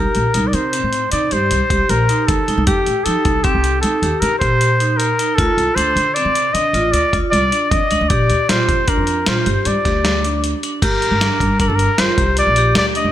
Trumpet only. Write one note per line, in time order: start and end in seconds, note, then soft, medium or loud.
0.00 0.49 A#4 medium
0.48 0.56 D5 medium
0.54 1.11 C5 medium
1.12 1.34 D5 medium
1.33 1.91 C5 medium
1.90 2.29 A#4 medium
2.28 2.66 A4 medium
2.67 3.06 G4 medium
3.04 3.45 A4 medium
3.44 3.81 G4 medium
3.81 4.22 A4 medium
4.20 4.39 A#4 medium
4.39 4.99 C5 medium
4.97 5.37 A#4 medium
5.35 5.77 A4 medium
5.75 6.16 C5 medium
6.14 6.55 D5 medium
6.53 6.94 D#5 medium
6.92 7.22 D5 medium
7.31 7.72 D5 medium
7.71 8.10 D#5 medium
8.09 8.51 D5 medium
8.49 8.90 C5 medium
8.89 9.29 A#4 medium
9.28 9.68 C5 medium
9.67 10.44 D5 medium
10.84 11.57 A#4 medium
11.61 11.70 A#4 medium
11.68 11.77 A4 medium
11.75 12.01 A#4 medium
12.00 12.38 C5 medium
12.39 12.74 D5 medium
12.77 12.86 D5 loud
12.96 13.12 D#5 medium